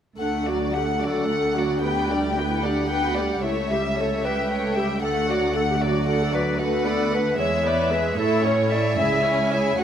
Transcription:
0.18 D2 A3 D4 A4 F#5
0.46 F#3 F#4 D5
0.73 A3 G4 A4 F#5
1.00 F#3 F#4 A4 D5 F#5
1.28 A3 A4 F#5
1.55 F#3 F#4 D5
1.83 B3 G4 B4 G5
2.09 G3 D4 G4 D5
2.36 B3 F#4 B4 G5
2.50 E4
2.63 G3 D4 G4 D5 F#5
2.90 B3 B4 G5
3.04 F#4
3.16 G3 G4 D5
3.43 C#2 A3 E4 A4 C#5 E5
3.70 G3 G4 E5
3.97 A3 A4 C#5
4.24 G3 G4 B4 E5 G5
4.50 A3 A4 C#5
4.76 G3 G4 E5
5.03 D2 A3 A4 F#5
5.28 F#3 F#4 D5
5.54 A3 A4 F#5
5.70 G4
5.81 F#3 F#4 D5
6.08 A3 A4 F#5
6.23 A4
6.33 F#3 F#4 B4 D5
6.60 A3 F#4 A4 B4 F#5
6.86 B3 A4 B4 D5
7.12 A3 A4 B4
7.38 E2 G#3 G#4 C#5 E5
7.65 B3 B4 D5
7.91 G#3 G#4 B4 E5
8.18 A2 E4 A4 C#5 E5
8.44 C#4 E4 C#5
8.71 E4 A4 D5 E5
8.97 C#2 E4 G#4 E5 G#5
9.23 C#4 E4 C#5
9.51 E4 G#4 C#5 E5
9.79 D2 A3 F#4 F#5

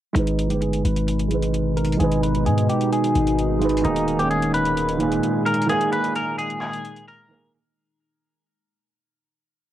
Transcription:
0.13 G#1 B2 D#3 G#3 D#4, closed hi-hat
0.18 B4
0.27 closed hi-hat
0.39 closed hi-hat
0.47 G1 G#3 D#4 G4, closed hi-hat
0.53 B4
0.62 G#4, closed hi-hat
0.73 closed hi-hat
0.85 G#1 B4, closed hi-hat
0.96 closed hi-hat
1.08 closed hi-hat
1.19 closed hi-hat
1.28 G#3 D#4, closed hi-hat
1.34 B4
1.42 closed hi-hat
1.54 closed hi-hat
1.77 A#4, closed hi-hat
1.85 closed hi-hat
1.92 closed hi-hat
1.97 G#1 G#3 D#4 G#4, closed hi-hat
2.03 B4
2.12 closed hi-hat
2.23 B4, closed hi-hat
2.35 closed hi-hat
2.46 G#2 G#4, closed hi-hat
2.58 closed hi-hat
2.69 G4, closed hi-hat
2.81 closed hi-hat
2.93 G#4, closed hi-hat
3.04 closed hi-hat
3.15 G#1, closed hi-hat
3.27 closed hi-hat
3.39 closed hi-hat
3.59 G#3 D#4, closed hi-hat
3.64 B4
3.69 closed hi-hat
3.77 closed hi-hat
3.82 D#1 A#2 D#3 G#3 A#3 D#4, closed hi-hat
3.87 G#4
3.96 closed hi-hat
4.08 closed hi-hat
4.17 D#3 A#3 G4, closed hi-hat
4.22 C#4
4.31 G#4, closed hi-hat
4.42 closed hi-hat
4.54 B4, closed hi-hat
4.65 closed hi-hat
4.77 closed hi-hat
4.89 closed hi-hat
4.97 A#2 D#3, closed hi-hat
5.03 G#4
5.12 closed hi-hat
5.23 closed hi-hat
5.46 A#4, closed hi-hat
5.54 closed hi-hat
5.62 closed hi-hat
5.67 D#3 A#3 G#4, closed hi-hat
5.72 G#4
5.81 closed hi-hat
5.93 B4, closed hi-hat
6.04 closed hi-hat
6.16 A#4, closed hi-hat
6.38 G#4, closed hi-hat
6.50 closed hi-hat
6.61 G#4, clap, closed hi-hat
6.73 closed hi-hat
6.85 closed hi-hat
6.96 closed hi-hat
7.08 A#4
7.28 D#3 A#3
7.34 G#4

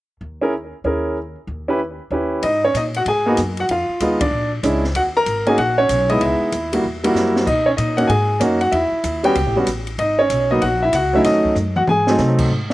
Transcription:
0.21 D#2
0.42 C#4 E4 G#4 A#4
0.84 D#2 C#4 E4 G#4 A#4
1.47 D#2
1.68 C#4 E4 G4 B4
2.11 D#2 C#4 E4 G4 B4
2.43 G#2 D#4 D#5, kick, ride
2.65 C#4 C#5
2.74 A#2 D#4 D#5, kick, hi-hat pedal, ride
2.94 F#4 F#5, ride
3.06 G#2 G#4 G#5, kick, ride
3.26 A#3 B3 D#4 F#4
3.37 F#2, kick, hi-hat pedal, ride
3.57 F#4 F#5, ride
3.69 F2 F4 F5, kick, ride
3.89 muted upright bass stroke
4.00 D#2 G#3 B3 D#4 F4, kick, hi-hat pedal, ride
4.21 D4 D5, kick, ride
4.31 A#1
4.63 C#2 G#3 C#4 D4 E4, kick, hi-hat pedal, ride
4.84 snare
4.95 D#2 F#4 F#5, kick, ride
5.17 A#4 A#5
5.26 G#1, kick, hi-hat pedal, ride
5.46 A#3 C#4 D#4 F#4 G#4 G#5, ride
5.58 A#1 F#4 F#5, kick, ride
5.78 C#4 C#5
5.89 B1, kick, hi-hat pedal, ride
6.09 G#3 B3 D#4 E4 D#5, ride
6.21 C#2 E4 E5, kick, ride
6.40 muted upright bass stroke
6.52 D#2, kick, hi-hat pedal, ride
6.73 G3 A#3 E4 F#4, ride
6.84 E2, kick
7.04 G3 A#3 E4 F#4, ride
7.14 F#2, snare, hi-hat pedal
7.36 snare
7.46 B2 D#4 D#5, kick, crash
7.66 C#4 C#5
7.77 A#2 D#4 D#5, kick, hi-hat pedal, ride
7.97 A#3 C#4 D#4 F#4 F#5, ride
8.07 G#2 G#4 G#5, kick, ride
8.40 F#2 A#3 C#4 D#4 F#4, kick, hi-hat pedal, ride
8.61 F#4 F#5, ride
8.72 E2 E4 E5, kick, ride
8.92 muted upright bass stroke
9.04 D#2, kick, hi-hat pedal, ride
9.23 G3 B3 C#4 F#4 G4 G5, ride
9.35 C#2, kick, ride
9.46 A1
9.56 G1 G3 B3 C#4 F#4
9.66 A1, kick, hi-hat pedal, ride
9.87 ride
9.98 G#1 D#4 D#5, kick, ride
10.19 C#4 C#5
10.30 B1, kick, hi-hat pedal, ride
10.51 F#3 A#3 B3 D#4 D#5
10.62 A#1 F#4 F#5, kick, ride
10.83 E4 E5
10.93 C#2 F#4 F#5, kick, hi-hat pedal, ride
11.13 F#3 A3 C#4 D#4 E4 E5
11.24 D#2 D#4 D#5, kick, snare, ride
11.45 muted upright bass stroke, kick
11.55 F#2, hi-hat pedal, high tom
11.76 F#4 F#5, mid tom
11.87 G#2 G#4 G#5, mid tom
12.07 F#3 A3 C4 D#4, snare
12.18 C3, snare, hi-hat pedal
12.39 kick, crash
12.50 G#2, kick
12.70 snare

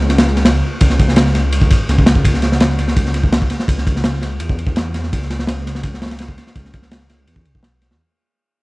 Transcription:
Already playing: C#2
0.01 snare
0.09 snare, ride
0.18 snare, ride
0.27 snare
0.36 snare, ride
0.45 snare, ride
0.55 snare
0.81 C#2, kick, ride
0.90 snare
0.99 kick, ride
1.08 snare
1.16 snare, ride
1.26 snare
1.35 C#2, snare, ride
1.52 ride
1.62 kick
1.70 G#1, kick, ride
1.89 C#2, snare, ride
1.98 kick
2.06 snare, ride
2.15 kick
2.25 C#2, kick, ride
2.34 snare
2.42 snare, ride
2.52 snare
2.60 snare, ride
2.70 snare
2.79 C#2, snare, ride
2.88 snare
2.97 kick, ride
3.06 snare
3.14 snare, ride
3.24 kick
3.32 snare, ride
3.42 kick
3.50 snare, ride
3.59 snare
3.68 C#2, kick, ride
3.78 snare
3.87 kick, ride
3.96 snare
4.04 snare, ride
4.13 snare
4.22 C#2, snare, ride
4.40 E2, ride
4.49 kick
4.59 ride
4.67 kick
4.76 snare, ride
4.94 snare, ride
5.03 snare
5.13 C#2, kick, ride
5.22 snare
5.30 snare, ride
5.39 snare
5.47 snare, ride
5.57 snare
5.66 C#2, snare, ride
5.75 snare
5.83 kick, ride
5.94 snare
6.02 snare, ride
6.06 snare, ride
6.11 snare, ride
6.19 snare, ride
6.28 kick
6.38 snare, ride
6.47 snare
6.55 C#2, kick, ride
6.65 snare
6.73 kick, ride
6.82 snare
6.91 snare, ride
7.00 snare
7.09 C#2, snare, ride
7.27 E2, ride
7.36 kick
7.45 B1, ride
7.55 kick
7.63 snare, ride
7.82 snare, ride
7.91 E2, snare

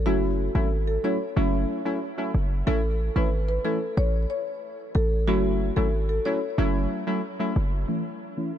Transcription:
0.06 F#1 F#3 A3 C#4 E4 F#4
0.55 G#1 F#3 A3 C#4 E4 A4
0.87 A4
1.04 F#3 A3 C#4 E4 C#5
1.36 F#1 F#3 A3 C#4 E4
1.85 F#3 A3 C#4 E4
2.18 F#3 A3 C#4 E4
2.34 F#1
2.67 A1 E3 A3 C#4 E4 A4
3.16 G#1 E3 A3 C#4 E4 B4
3.49 B4
3.64 E3 A3 C#4 E4 A4
3.97 A1 C#5
4.30 C#5
4.95 A1 A4
5.27 F#1 F#3 A3 C#4 E4 F#4
5.76 G#1 F#3 A3 C#4 E4 A4
6.09 A4
6.25 F#3 A3 C#4 E4 C#5
6.58 F#1 F#3 A3 C#4 E4
7.07 F#3 A3 C#4 E4
7.39 F#3 A3 C#4 E4
7.56 F#1
7.88 E3 A3 C#4 E4
8.37 E3 A3 C#4 E4

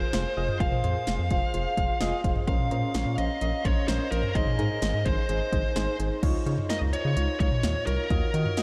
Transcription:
Already playing: F4 G#4 C5
0.13 F1 F4 G#4 C5, snare
0.37 F1 F4 G#4 D#5
0.48 mid tom
0.60 F1 F4 G#4 C5 F5, kick, closed hi-hat
0.72 mid tom
0.84 F2 F4 G#4 C5, closed hi-hat
1.07 F1 F4 G#4 C5, snare, closed hi-hat
1.19 F2
1.31 F1 F4 G#4 C5, kick, closed hi-hat
1.54 F1 F4 G#4 C5, closed hi-hat
1.77 F1 F4 G#4 C5, kick, closed hi-hat
2.01 F1 F4 G#4 D#5, snare, closed hi-hat
2.24 F1 F4 G#4 C5, kick, closed hi-hat
2.36 mid tom
2.48 A#1 C#4 A#4 C5 F5, kick, closed hi-hat
2.59 mid tom
2.71 A#2 C#4 A#4 C5, closed hi-hat
2.94 A#1 C#4 A#4 C#5, snare, closed hi-hat
3.06 A#2
3.18 A#1 C#4 A#4 C5 D#5, closed hi-hat
3.41 A#1 C#4 A#4 D#5, closed hi-hat
3.65 A#1 C#4 A#4 C5 C#5, kick, closed hi-hat
3.88 A#1 C#4 A#4 C5, snare, closed hi-hat
4.12 A#1 C#4 A#4 C5, closed hi-hat
4.23 mid tom
4.35 G#1 D#4 G#4 C5 D#5, kick, closed hi-hat
4.47 mid tom
4.59 G#2 D#4 G#4 A#4, closed hi-hat
4.82 G#1 D#4 G#4 C5, snare, closed hi-hat
4.94 G#2
5.05 G#1 D#4 G#4 C5, kick, closed hi-hat
5.29 G#1 D#4 G#4 C5, closed hi-hat
5.53 G#1 D#4 G#4 C5, kick, closed hi-hat
5.76 G#1 D#4 G#4 C5, snare, closed hi-hat
5.99 G#1 D#4 G#4 C5, closed hi-hat
6.23 C#2 D#4 F4 C#5, kick, closed hi-hat, crash
6.46 C#3 D#4 F4 C#5, closed hi-hat
6.58 mid tom
6.70 D#4 F4 A#4 D#5, snare, closed hi-hat
6.81 C#2
6.93 D#4 F4 C#5, closed hi-hat
7.05 C#3
7.17 C#2 D#4 F4 C#5, closed hi-hat
7.40 C#2 D#4 F4 C#5, kick, closed hi-hat
7.52 mid tom
7.63 D#2 D#4 F4 C#5, snare, closed hi-hat
7.87 C2 D#4 F4 A#4 C#5, closed hi-hat
8.10 D#2 F4 F#4 D#5, kick, closed hi-hat
8.34 D#3 F4 F#4 D#5, closed hi-hat
8.46 mid tom
8.57 F4 F#4 D#5, snare, closed hi-hat

